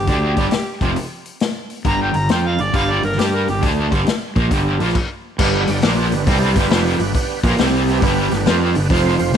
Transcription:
Already playing: G4
0.07 D2 D3 A3 D4, kick, open hi-hat
0.37 G1 G2 D3 G3, kick, open hi-hat
0.51 muted fingered electric bass stroke, muted overdriven electric guitar stroke, snare, open hi-hat
0.81 F1 F2 C3 F3, kick, open hi-hat
0.96 open hi-hat
1.26 open hi-hat
1.40 snare, open hi-hat
1.70 open hi-hat
1.85 G1 G2 D3 G3 A#5, kick, open hi-hat
2.02 G5
2.14 G1 G2 D3 A#5, open hi-hat
2.29 F2 F3 C4 F4 G5, snare, open hi-hat
2.47 F5
2.58 G1 G2 D3 D5, open hi-hat
2.73 G1 G2 D3 G3 F5, kick, open hi-hat
2.90 D5
3.03 G1 G2 D3 A#4, open hi-hat
3.12 snare
3.18 G2 G3 D4 G4, snare, open hi-hat
3.34 A#4
3.47 G1 G2 D3 G4, open hi-hat
3.62 D2 D3 A3 D4, kick, open hi-hat
3.91 G1 G2 D3 G3, kick, open hi-hat
4.07 muted overdriven electric guitar stroke, muted fingered electric bass stroke, snare, open hi-hat
4.36 A#1 A#2 F3 A#3, kick, open hi-hat
4.50 G1 G2 D3 G3, kick, open hi-hat
4.80 A#1 A#2 F3 A#3, open hi-hat
4.89 snare
4.95 kick, crash
5.38 G1 G2 D3 G3 B3 D4 G4 B4, kick, crash
5.67 G1 G2 D3 B3 D4 G4 D5, open hi-hat
5.81 A#1 A#2 F3 A#3 B3 D4 G4 B4, snare, open hi-hat
6.11 G1 G2 D3 B3 D4 G4 B4, open hi-hat
6.26 C2 C3 G3 B3 C4 D4 G4 A4, kick, open hi-hat
6.56 G1 G2 D3 G3 B3 D4 G4 B4, kick, open hi-hat
6.70 F1 F2 C3 F3 B3 D4 G4 B4, snare, open hi-hat
6.98 G1 G2 D3 B3 D4 G4 B4, open hi-hat
7.14 B3 D4 G4 B4, kick, open hi-hat
7.43 A#1 A#2 F3 A#3 B3 D4 G4 B4, kick, open hi-hat
7.58 C2 C3 G3 C4 G4 C5, snare, open hi-hat
7.87 G3 C4 G4 B4, open hi-hat
8.02 G1 G2 D3 G3 B3 D4 G4 B4, kick, open hi-hat
8.31 G1 G2 D3 B3 D4 G4 B4, snare, open hi-hat
8.44 F2 F3 B3 C4 D4 F4 G4 B4, snare, open hi-hat
8.74 G1 G2 D3 B3 D4 G4 B4, open hi-hat
8.90 F1 F2 C3 F3 C4 F4 C5, kick, open hi-hat
9.19 F1 F2 C3 F3 C4 F4 C5, open hi-hat
9.33 F3 C4 F4, open hi-hat

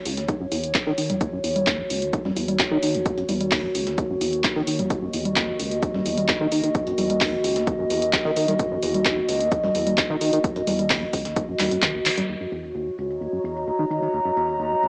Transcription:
Already playing: D#2 D#3 F#4 C#5
0.06 C#2, open hi-hat, shaker
0.17 D#2, snare, closed hi-hat
0.29 D#2, kick, closed hi-hat, shaker
0.40 F#2
0.52 E2, open hi-hat, shaker
0.64 D#2, closed hi-hat
0.74 D#2, kick, snare, clap, closed hi-hat, shaker
0.87 D#3, snare
0.98 D#3, open hi-hat, shaker
1.10 D#2, closed hi-hat, low conga
1.21 D#2, kick, closed hi-hat, shaker
1.33 F#2
1.44 E2, open hi-hat, shaker
1.56 D#2, closed hi-hat, low conga
1.67 D#2, kick, snare, clap, closed hi-hat, shaker
1.79 G#2
1.90 C#2, open hi-hat, shaker
2.02 D#2, closed hi-hat
2.13 D#2, kick, closed hi-hat, shaker
2.25 F#2, snare, low conga
2.36 E2, open hi-hat, shaker
2.48 D#2, closed hi-hat, low conga
2.59 D#2, kick, snare, clap, closed hi-hat, shaker
2.71 D#3
2.82 D#3, open hi-hat, shaker
2.94 D#2, closed hi-hat
3.06 D#2, kick, closed hi-hat, shaker
3.17 F#2, closed hi-hat
3.29 E2, open hi-hat, low conga, shaker
3.41 D#2, closed hi-hat, low conga
3.51 D#2, kick, snare, clap, closed hi-hat, open hi-hat
3.64 G#2
3.75 C#2, open hi-hat, shaker
3.87 D#2, snare, closed hi-hat
3.98 D#2, kick, closed hi-hat, shaker
4.10 F#2
4.21 E2, open hi-hat, shaker
4.33 D#2, closed hi-hat
4.44 D#2, kick, snare, clap, closed hi-hat, shaker
4.56 D#3, snare
4.67 D#3, open hi-hat, shaker
4.79 D#2, closed hi-hat, low conga
4.90 D#2 D#5, kick, closed hi-hat, shaker
5.02 F#2
5.13 E2, open hi-hat, shaker
5.25 D#2, closed hi-hat, low conga
5.36 D#2, kick, snare, clap, closed hi-hat, shaker
5.48 G#2
5.59 C#2, open hi-hat, shaker
5.71 D#2, closed hi-hat
5.82 D#2, kick, closed hi-hat, shaker
5.94 F#2, snare, low conga
6.06 E2, open hi-hat, shaker
6.17 D#2, closed hi-hat, low conga
6.28 D#2, kick, snare, clap, closed hi-hat, shaker
6.41 D#3
6.52 D#3, open hi-hat, shaker
6.64 D#3, closed hi-hat
6.75 D#2, kick, closed hi-hat, shaker
6.87 F#2, closed hi-hat
6.98 E2, open hi-hat, low conga, shaker
7.10 D#2, closed hi-hat, low conga
7.21 D#2, kick, snare, clap, closed hi-hat, open hi-hat
7.33 G#2
7.44 C#2, open hi-hat, shaker
7.56 D#2, snare, closed hi-hat
7.67 D#2, kick, closed hi-hat, shaker
7.79 F#2
7.90 E2, open hi-hat, shaker
8.02 D#2, closed hi-hat
8.13 D#2, kick, snare, clap, closed hi-hat, shaker
8.25 D#3, snare
8.36 D#3, open hi-hat, shaker
8.48 D#3, closed hi-hat, low conga
8.59 D#2, kick, closed hi-hat, shaker
8.71 F#2
8.82 E2, open hi-hat, shaker
8.94 D#2, closed hi-hat, low conga
9.05 D#2, kick, snare, clap, closed hi-hat, shaker
9.17 G#2
9.29 C#2, open hi-hat, shaker
9.40 D#2, closed hi-hat
9.52 D#2, kick, closed hi-hat, shaker
9.64 F#2, snare, low conga
9.75 E2, open hi-hat, shaker
9.87 D#2, closed hi-hat, low conga
9.98 D#2, kick, snare, clap, closed hi-hat, shaker
10.10 D#3
10.21 D#3, open hi-hat, shaker
10.33 D#3, closed hi-hat
10.44 D#2, kick, closed hi-hat, shaker
10.56 F#2, closed hi-hat
10.67 E2, open hi-hat, low conga, shaker
10.79 D#2, closed hi-hat, low conga
10.90 D#2, kick, snare, clap, closed hi-hat, open hi-hat
11.02 G#2
11.13 C#2, kick, open hi-hat, shaker
11.25 D#2, snare, closed hi-hat
11.36 D#2, kick, closed hi-hat, shaker
11.48 F#2
11.59 D#2, snare, clap, open hi-hat, low conga, shaker
11.71 F#2, closed hi-hat
11.82 D#3, kick, clap, closed hi-hat, shaker
11.94 D#2
12.06 D#3, clap, open hi-hat, shaker
12.17 F#2, snare, closed hi-hat, low conga
12.29 D#2 D#3 F#4 C#5
12.41 F#2
12.52 E2, shaker
12.64 D#2, shaker
12.68 C#5
12.75 D#2, shaker
12.87 G#2
12.98 C#2 D#5, shaker
13.10 D#2 A#5, shaker
13.21 D#2, shaker
13.33 F#2
13.44 E2, shaker
13.56 D#2, shaker
13.67 D#2, shaker
13.79 D#3
13.90 D#3, shaker
14.02 D#3, shaker
14.13 D#2, shaker
14.25 F#2
14.36 E2, shaker
14.48 D#2, shaker
14.59 D#2, shaker
14.71 G#2
14.82 C#2, shaker

